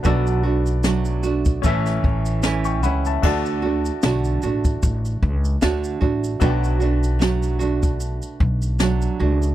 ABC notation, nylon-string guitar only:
X:1
M:4/4
L:1/8
Q:"Swing 16ths" 1/4=75
K:D
V:1 name="Nylon-string guitar"
[B,,F,A,DF] [A,DF] [F,A,DF] [A,DF] [A,,E,A,CE]2 [E,A,CE] [A,CE] | [D,A,DF] [A,DF] [D,A,DF] [A,DF]3 [D,A,DF] [A,DF] | [B,,F,A,DF] [A,DF] [F,A,DF] [A,DF]3 [F,A,DF] [A,DF] |]